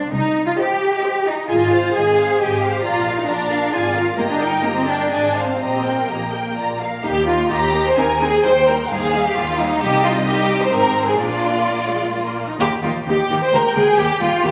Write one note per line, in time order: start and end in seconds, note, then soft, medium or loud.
0.00 0.12 D4 medium
0.12 0.48 C2 medium
0.12 0.45 D#4 medium
0.46 0.51 F4 medium
0.57 0.91 G4 medium
0.57 1.24 G4 medium
0.57 0.91 C5 medium
0.57 0.91 D#5 medium
1.01 1.36 G4 medium
1.01 1.37 C5 medium
1.01 1.36 D#5 medium
1.26 1.48 D#4 medium
1.48 1.88 G#1 medium
1.48 1.93 F4 medium
1.48 1.69 G#4 medium
1.48 1.69 D#5 medium
1.48 1.70 G#5 medium
1.71 1.94 C5 medium
1.71 1.93 F5 soft
1.71 1.94 F5 soft
1.93 2.34 G#1 medium
1.93 2.38 G#4 medium
1.93 2.17 G#4 medium
1.93 2.17 D#5 medium
1.93 2.16 G#5 medium
2.17 2.39 C5 soft
2.17 2.39 F5 medium
2.39 2.79 G#1 medium
2.39 2.84 G4 medium
2.39 2.60 G#4 medium
2.39 2.60 D#5 soft
2.39 2.60 G#5 soft
2.61 2.84 C5 soft
2.61 2.84 F5 soft
2.82 3.23 A#1 medium
2.82 3.16 F4 medium
2.82 3.05 F4 medium
2.82 3.04 D5 medium
2.82 3.04 A#5 medium
3.05 3.29 A#4 soft
3.05 3.28 F5 medium
3.05 3.29 F5 soft
3.17 3.28 D#4 medium
3.27 3.68 A#1 medium
3.27 3.72 D4 medium
3.27 3.51 F4 soft
3.27 3.51 D5 medium
3.27 3.51 A#5 soft
3.51 3.73 A#4 medium
3.51 3.73 F5 medium
3.51 3.74 F5 soft
3.72 4.14 G#1 medium
3.72 3.96 F4 medium
3.72 3.95 G#4 soft
3.72 3.95 D5 soft
3.72 3.94 G#5 medium
3.95 4.19 A#4 soft
3.95 4.18 F5 soft
3.95 4.19 F5 soft
4.18 4.59 G1 medium
4.18 4.22 A#3 medium
4.18 4.40 G4 soft
4.18 4.40 D#5 soft
4.18 4.40 A#5 soft
4.30 4.41 D4 medium
4.41 4.64 D#4 medium
4.41 4.64 A#4 soft
4.41 4.64 G5 soft
4.41 4.65 G5 soft
4.63 5.06 G1 medium
4.63 4.76 A#3 medium
4.63 4.88 G4 soft
4.63 4.88 D#5 soft
4.63 4.87 A#5 soft
4.76 4.87 C4 medium
4.87 5.09 D4 medium
4.87 5.11 A#4 soft
4.87 5.12 G5 soft
5.10 5.54 G#1 soft
5.10 5.46 D4 medium
5.10 5.33 G#4 soft
5.10 5.33 D#5 soft
5.10 5.34 G#5 soft
5.35 5.60 C5 soft
5.35 5.60 F5 soft
5.47 5.57 C4 soft
5.58 6.03 A#1 soft
5.58 6.07 C4 medium
5.58 5.83 G4 soft
5.58 5.82 D#5 soft
5.58 5.82 A#5 soft
5.83 6.08 A#4 soft
5.83 6.08 G5 soft
6.07 6.51 A#1 soft
6.07 6.80 A#3 soft
6.07 6.33 G4 soft
6.07 6.33 D#5 soft
6.07 6.32 A#5 soft
6.31 6.56 A#4 soft
6.31 6.56 G5 soft
6.31 6.57 G5 soft
6.55 7.00 A#1 soft
6.55 6.79 F4 soft
6.55 6.80 D5 soft
6.55 6.79 A#5 soft
6.81 7.05 A#4 soft
6.81 7.05 F5 soft
7.04 7.45 D#2 medium
7.04 7.12 A#3 medium
7.04 7.12 D#4 medium
7.04 7.26 G4 medium
7.27 7.35 A#3 soft
7.27 7.36 D#4 soft
7.27 7.50 F4 medium
7.49 7.92 D#2 medium
7.49 7.58 A#3 soft
7.49 7.58 D#4 medium
7.49 7.85 G4 medium
7.49 7.93 A#5 medium
7.74 7.82 A#3 medium
7.74 7.82 D#4 soft
7.85 7.97 C5 medium
7.96 8.38 D#2 medium
7.96 8.05 C4 medium
7.96 8.05 D#4 medium
7.96 8.21 A#4 medium
7.96 8.42 G#5 medium
8.20 8.29 C4 soft
8.20 8.29 D#4 medium
8.20 8.43 G#4 medium
8.43 8.84 D#2 medium
8.43 8.52 G3 medium
8.43 8.52 D#4 medium
8.43 8.66 C5 loud
8.43 8.89 G5 medium
8.67 8.76 G3 medium
8.67 8.76 D#4 medium
8.67 8.89 A#4 medium
8.89 9.29 D#2 medium
8.89 9.30 D#2 medium
8.89 8.99 G3 medium
8.89 8.99 D#4 medium
8.89 9.24 G#4 loud
8.89 9.80 F5 medium
9.13 9.22 G3 medium
9.13 9.21 D#4 medium
9.26 9.36 G4 medium
9.35 9.75 D#2 medium
9.35 9.44 G3 medium
9.35 9.44 D#4 medium
9.35 9.58 F4 medium
9.59 9.67 G3 medium
9.59 9.67 D#4 medium
9.59 9.81 D#4 medium
9.80 10.67 C2 medium
9.80 10.68 C2 medium
9.80 10.23 G3 medium
9.80 10.23 D#4 medium
9.80 10.03 G4 loud
9.80 10.70 D#5 medium
10.04 10.12 F4 medium
10.26 10.70 G3 medium
10.26 10.70 D#4 medium
10.26 10.59 G4 medium
10.61 10.72 C5 medium
10.71 11.18 G#1 medium
10.71 11.18 G#2 medium
10.71 11.17 C4 medium
10.71 11.17 D#4 soft
10.71 11.05 A#4 medium
10.71 11.17 C5 medium
11.07 11.18 G#4 medium
11.17 12.37 A#1 medium
11.17 12.37 A#2 medium
11.17 11.60 A#3 medium
11.17 11.61 D4 medium
11.17 12.35 F4 medium
11.17 12.36 D5 medium
11.66 11.87 A#3 medium
11.89 12.13 G#3 medium
12.12 12.47 A#3 medium
12.49 12.59 D#4 medium
12.59 12.67 D#2 medium
12.59 12.68 D#2 medium
12.59 12.68 A#3 medium
12.59 12.68 D#4 medium
12.59 12.68 G4 medium
12.83 12.91 D#2 medium
12.83 12.92 A#3 soft
12.83 12.92 D#4 soft
12.83 12.91 F4 medium
13.06 13.14 D#2 medium
13.06 13.16 A#3 medium
13.06 13.16 D#4 medium
13.06 13.40 G4 medium
13.06 14.51 G5 medium
13.29 13.37 D#2 medium
13.29 13.38 D#2 medium
13.29 13.38 A#3 medium
13.29 13.39 D#4 medium
13.43 13.53 C5 medium
13.53 13.61 D2 medium
13.53 13.61 G#3 medium
13.53 13.61 A#3 medium
13.53 13.76 A#4 medium
13.75 13.83 D2 medium
13.75 13.84 D2 medium
13.75 13.83 G#3 medium
13.75 13.83 A#3 medium
13.75 13.97 G#4 medium
13.97 14.06 D#2 medium
13.97 14.06 G3 medium
13.97 14.06 A#3 medium
13.97 14.20 G4 loud
14.20 14.28 D#2 medium
14.20 14.29 G3 medium
14.20 14.29 A#3 medium
14.20 14.43 F4 medium
14.43 14.51 D#2 medium
14.43 14.51 G3 medium
14.43 14.51 A#3 medium
14.43 14.51 G4 loud